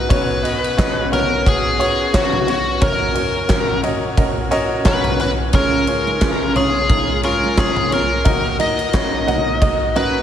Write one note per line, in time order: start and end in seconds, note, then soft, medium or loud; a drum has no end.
0.00 0.12 D#4 loud
0.00 0.09 F#4 loud
0.00 5.50 F#4 medium
0.00 0.12 A#4 loud
0.00 1.09 B4 loud
0.00 0.10 C#5 medium
0.00 0.12 D#5 loud
0.00 0.12 F#5 medium
0.09 2.77 B1 medium
0.09 2.77 B2 medium
0.09 2.79 B3 medium
0.09 0.35 C#4 loud
0.09 8.22 C#4 medium
0.09 0.35 F#4 medium
0.09 0.36 B4 medium
0.09 0.36 C#5 loud
0.09 kick loud
0.09 ride medium
0.42 0.69 C#4 medium
0.42 0.69 F#4 medium
0.42 0.69 B4 medium
0.42 0.69 D#5 medium
0.42 ride medium
0.64 ride medium
0.77 1.03 C#4 medium
0.77 1.03 F#4 medium
0.77 1.04 B4 medium
0.77 1.04 D#5 loud
0.77 kick loud
0.77 snare loud
0.77 clap medium
0.77 ride medium
1.12 1.38 C#4 medium
1.12 1.38 F#4 medium
1.12 1.48 A#4 medium
1.12 1.38 B4 medium
1.12 1.38 C#5 medium
1.12 floor tom medium
1.12 ride medium
1.46 1.72 C#4 medium
1.46 1.72 F#4 medium
1.46 2.17 G#4 medium
1.46 1.72 B4 medium
1.46 1.72 C#5 medium
1.46 kick loud
1.46 ride medium
1.79 2.05 C#4 medium
1.79 2.05 F#4 medium
1.79 2.05 B4 medium
1.79 2.06 C#5 loud
1.79 ride medium
2.13 2.39 C#4 loud
2.13 2.40 F#4 medium
2.13 2.49 F#4 medium
2.13 2.40 B4 loud
2.13 2.40 C#5 loud
2.13 kick loud
2.13 snare loud
2.13 clap medium
2.13 ride medium
2.33 floor tom medium
2.47 2.73 C#4 medium
2.47 2.73 F#4 medium
2.47 2.84 F#4 medium
2.47 2.73 B4 medium
2.47 2.73 C#5 medium
2.47 ride medium
2.81 5.49 F#1 medium
2.81 5.49 F#2 medium
2.81 5.51 A#2 medium
2.81 3.07 C#4 medium
2.81 3.07 F#4 medium
2.81 3.07 A#4 loud
2.81 3.80 A#4 medium
2.81 3.08 C#5 loud
2.81 kick loud
2.81 ride medium
3.14 3.41 C#4 medium
3.14 3.41 F#4 medium
3.14 3.41 A#4 medium
3.14 3.41 C#5 medium
3.14 ride medium
3.48 3.75 C#4 medium
3.48 3.75 F#4 medium
3.48 3.75 A#4 medium
3.48 3.75 C#5 medium
3.48 kick loud
3.48 snare loud
3.48 clap medium
3.48 ride medium
3.83 4.09 C#4 loud
3.83 4.09 F#4 medium
3.83 4.09 A#4 medium
3.83 4.10 D#5 loud
3.83 ride medium
4.17 4.43 C#4 medium
4.17 4.43 F#4 medium
4.17 4.44 A#4 medium
4.17 4.44 D#5 medium
4.17 kick loud
4.17 ride medium
4.51 4.77 C#4 loud
4.51 4.77 F#4 loud
4.51 4.77 A#4 loud
4.51 4.77 D#5 loud
4.51 ride medium
4.85 5.11 C#4 loud
4.85 5.11 F#4 medium
4.85 5.12 A#4 medium
4.85 5.20 B4 medium
4.85 5.12 C#5 loud
4.85 kick loud
4.85 snare loud
4.85 clap medium
4.85 ride medium
5.04 floor tom medium
5.04 ride soft
5.19 5.45 C#4 medium
5.19 5.45 F#4 medium
5.19 5.46 A#4 medium
5.19 5.30 B4 medium
5.19 5.46 C#5 medium
5.19 snare soft
5.19 ride medium
5.53 8.21 C#2 medium
5.53 8.21 C#3 medium
5.53 8.23 G#3 medium
5.53 5.79 C#4 medium
5.53 5.86 C#4 loud
5.53 8.23 F4 medium
5.53 5.79 F4 medium
5.53 5.79 G#4 medium
5.53 6.56 A#4 medium
5.53 5.80 C#5 loud
5.53 kick loud
5.53 ride medium
5.87 6.13 C#4 medium
5.87 6.13 F4 medium
5.87 6.13 G#4 medium
5.87 6.14 C#5 medium
5.87 ride medium
6.07 6.21 D#4 medium
6.21 6.47 C#4 medium
6.21 6.54 C#4 medium
6.21 6.47 F4 medium
6.21 6.47 G#4 medium
6.21 6.47 B4 medium
6.21 kick loud
6.21 snare loud
6.21 clap medium
6.21 ride medium
6.55 6.81 C#4 medium
6.55 6.74 C#4 medium
6.55 6.81 F4 medium
6.55 6.81 G#4 medium
6.55 7.20 G#4 medium
6.55 6.82 C#5 medium
6.55 floor tom medium
6.55 ride medium
6.89 7.15 C#4 medium
6.89 7.08 D#4 medium
6.89 7.15 F4 medium
6.89 7.15 G#4 medium
6.89 7.16 A#4 medium
6.89 kick loud
6.89 ride medium
7.23 7.49 C#4 loud
7.23 7.49 F4 medium
7.23 7.49 G#4 medium
7.23 7.56 A#4 loud
7.23 7.50 C#5 loud
7.23 ride medium
7.44 7.57 F4 medium
7.57 7.83 C#4 loud
7.57 7.83 F4 medium
7.57 7.76 F4 medium
7.57 7.83 G#4 medium
7.57 7.93 G#4 medium
7.57 7.83 C#5 loud
7.57 kick loud
7.57 snare loud
7.57 clap loud
7.57 ride medium
7.76 floor tom medium
7.90 8.17 C#4 medium
7.90 8.17 F4 medium
7.90 8.10 F4 medium
7.90 8.17 G#4 medium
7.90 8.56 A#4 loud
7.90 8.17 C#5 medium
7.90 ride medium
8.25 10.22 D#2 medium
8.25 10.22 A#2 medium
8.25 10.22 D#3 medium
8.25 8.51 D#4 medium
8.25 10.22 D#4 medium
8.25 8.51 F#4 medium
8.25 10.22 F#4 medium
8.25 8.51 A#4 medium
8.25 8.51 D#5 loud
8.25 kick loud
8.25 ride medium
8.59 8.85 D#4 medium
8.59 8.78 D#4 medium
8.59 8.85 F#4 medium
8.59 8.85 A#4 medium
8.59 8.85 D#5 medium
8.59 10.00 D#5 loud
8.59 ride medium
8.79 ride medium
8.93 9.19 D#4 medium
8.93 9.19 F#4 medium
8.93 9.19 A#4 medium
8.93 9.19 C#5 medium
8.93 kick loud
8.93 snare loud
8.93 clap loud
8.93 ride medium
9.27 9.53 D#4 medium
9.27 9.53 F#4 medium
9.27 9.53 A#4 medium
9.27 9.53 F#5 loud
9.27 floor tom medium
9.27 ride medium
9.61 9.87 D#4 medium
9.61 9.87 F#4 medium
9.61 9.87 A#4 medium
9.61 9.87 D#5 medium
9.61 kick loud
9.61 ride medium
9.96 10.14 C#4 loud
9.96 10.21 D#4 loud
9.96 10.21 F#4 medium
9.96 10.22 A#4 medium
9.96 10.22 B4 loud
9.96 10.22 D#5 loud
9.96 ride medium